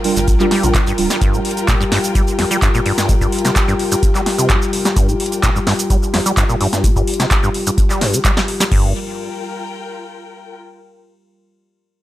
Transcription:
Already playing: G3 F4 A#4 G5
0.04 G3 D4 F4 A#4, open hi-hat
0.16 G1 G2, closed hi-hat, shaker
0.28 A#1, kick, closed hi-hat, shaker
0.40 G3 D4 F4 A#4, clap, shaker
0.51 G3, snare, open hi-hat
0.63 A#1 G2 G3 D4 F4 A#4, closed hi-hat, shaker
0.74 C3, kick, clap, closed hi-hat, shaker
0.87 G2, shaker
0.98 D1 G3 D4 F4 A#4, open hi-hat
1.10 G3, snare, shaker
1.21 G2 G4, kick, closed hi-hat, shaker
1.34 A2, shaker
1.45 open hi-hat
1.51 closed hi-hat
1.57 closed hi-hat, shaker
1.68 A#2, kick, clap, closed hi-hat, shaker
1.81 G2, shaker
1.92 G2, snare, open hi-hat
2.04 closed hi-hat, shaker
2.15 G3, kick, closed hi-hat, shaker
2.28 shaker
2.39 F2, snare, open hi-hat
2.51 G3, closed hi-hat, shaker
2.62 G2, kick, clap, closed hi-hat, shaker
2.74 A#2, shaker
2.86 G2, open hi-hat
2.98 G2, snare, closed hi-hat, shaker
3.09 A#2, kick, closed hi-hat, shaker
3.21 G2, kick, shaker
3.32 open hi-hat
3.39 closed hi-hat
3.45 C3, snare, closed hi-hat, shaker
3.56 kick, clap, closed hi-hat, shaker
3.68 G2, shaker
3.79 open hi-hat
3.92 G2, closed hi-hat, shaker
4.03 kick, closed hi-hat, shaker
4.15 G3, clap, shaker
4.26 snare, open hi-hat
4.38 C3, closed hi-hat, shaker
4.50 F2, kick, clap, closed hi-hat, shaker
4.62 shaker
4.73 open hi-hat
4.85 G3, snare, closed hi-hat, shaker
4.96 G2, kick, closed hi-hat, shaker
5.09 A2, shaker
5.20 open hi-hat
5.26 closed hi-hat
5.32 closed hi-hat, shaker
5.43 A#2, kick, clap, closed hi-hat, shaker
5.56 G2, shaker
5.67 G2, snare, open hi-hat
5.79 closed hi-hat, shaker
5.90 G3, kick, closed hi-hat, shaker
6.03 shaker
6.14 F2, snare, open hi-hat
6.26 G3, closed hi-hat, shaker
6.37 G2, kick, clap, closed hi-hat, shaker
6.49 A#2, shaker
6.61 G2, open hi-hat
6.73 G2, snare, closed hi-hat, shaker
6.84 A#2, kick, closed hi-hat, shaker
6.96 G2, kick, shaker
7.07 open hi-hat
7.14 closed hi-hat
7.20 C3, snare, closed hi-hat, shaker
7.31 kick, clap, closed hi-hat, shaker
7.43 G2, shaker
7.54 open hi-hat
7.67 G2, closed hi-hat, shaker
7.78 kick, closed hi-hat, shaker
7.90 G3, clap, shaker
8.01 G2, snare, open hi-hat
8.13 D3, closed hi-hat, shaker
8.25 G3, kick, clap, closed hi-hat, shaker
8.37 G3, snare, shaker
8.48 open hi-hat
8.60 G3, snare, closed hi-hat, shaker
8.71 G1 G2 G3 F4 A#4, kick, crash
8.79 A#4
8.86 G5

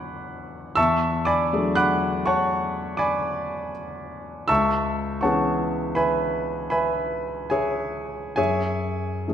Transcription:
Already playing: F#3 B3 D4 A4 F#5 G#5 B5 C#6 D6 E6 F#6 G#6
0.76 E2 E5 A5 C#6 E6
1.25 D5 G#5 B5 D6
1.53 F#3 A3 D4 G#4
1.75 F#5 B5 D6 F#6
2.26 C#5 F#5 A5 C#6
2.97 D5 G#5 B5 D6
4.48 C#2 E5 A5 C#6 E6
5.21 E3 B3 C#4 C#5 F#5 A5 C#6
5.25 G#4
5.95 B4 E5 G#5 B5
6.70 B4 E5 G#5 B5
7.50 G#4 C#5 E5 G#5
8.36 F#2 G#4 C#5 E5 G#5
9.28 E3 A3 C#4 G#4

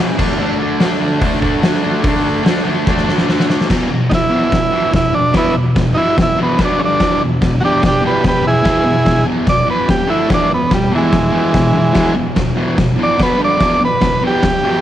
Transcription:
Already playing: E2
0.00 B2 E3
0.17 A3 D4, kick, crash
0.21 D3
0.39 D3 A3
0.43 D4
0.59 D4
0.64 A3
0.80 D3, snare, open hi-hat
0.84 A3 D4
1.00 A3 D4
1.05 D3
1.20 D3 A3, kick, open hi-hat
1.25 D4
1.41 A3 D4, kick
1.45 D3
1.61 D3 A3 D4, snare, open hi-hat
1.82 D4
1.86 A3
2.03 D3 A3, kick, open hi-hat
2.08 D4
2.24 D4
2.29 A3
2.43 D3 A3, snare, open hi-hat
2.48 D4
2.64 A3 D4
2.69 D3
2.86 D3 A3, kick, snare
2.90 D4
2.97 snare
3.05 A3 D4, snare
3.10 D3
3.18 snare
3.26 D3 A3, snare
3.31 D4
3.40 snare
3.47 D4, snare
3.51 A3
3.61 snare
3.68 E2 B2 E3, kick, snare, crash
3.89 E2 B2
4.09 E2 B2 D#4, kick, snare, crash
4.15 E4
4.30 E2 B2 E3
4.50 E2 B2, kick, snare, crash
4.71 E2 B2 E3
4.92 E2 B2 E4, kick, snare, crash
5.13 E2 B2 D4
5.33 E2 B2 E3, kick, snare, crash
5.37 B3 E4
5.54 E2 B2
5.76 E2 B2, kick, snare, crash
5.94 E2 B2 E3 D#4 E4
6.17 E2 B2, kick, snare, crash
6.22 E4
6.36 E2 B2 E3
6.43 B3
6.58 B2 F#3 B3, kick, snare, crash
6.65 D4
6.79 G2 D3 G3 C#4
6.85 D4
7.00 E2 B2 E3, kick, snare, crash
7.22 E2 B2
7.41 E2 B2, kick, snare, crash
7.61 E2 B2 E3 F#4
7.65 D4 G4
7.82 E2 B2 D4, kick, snare, crash
7.88 G4
8.01 E2 B2 E3
8.06 G4 B4
8.23 E2 B2, kick, snare, crash
8.28 G4 B4
8.43 E2 B2
8.47 E4 G#4
8.63 E2 B2 E3, kick, snare, crash
8.84 E2 B2
9.05 E2 B2, kick, snare, crash
9.25 E2 B2 E3
9.47 E2 B2 D5, kick, snare, crash
9.66 E2 B2 E3
9.70 B4
9.88 E2 B2 G4, kick, snare, crash
10.07 D3 A3 D4 E4
10.28 E2 B2 E3, kick, snare, crash
10.34 D4
10.50 E2 B2
10.54 B3
10.71 E2 B2 G3, kick, snare, crash
10.90 E2 B2 E3
10.96 E3 G#3
11.11 E2 B2, kick, snare, crash
11.31 E2 B2 E3
11.54 E2 B2, kick, snare, crash
11.73 E2 B2
11.93 E2 B2 E3, kick, snare, crash
12.15 E2 B2
12.36 E2 B2, kick, snare, crash
12.56 E2 B2 E3
12.76 E2 B2, kick, snare, crash
12.96 E2 B2 E3
13.03 D5
13.16 B2 F#3 B3, kick, crash
13.20 B4, snare
13.38 G2 D3 G3
13.44 D5
13.57 E2 B2 E3, kick, snare, crash
13.79 E2 B2
13.85 B4
14.00 E2 B2, kick, snare, crash
14.22 E2 B2 E3
14.27 G4
14.42 E2 B2, kick, snare, crash
14.63 E2 B2 E3

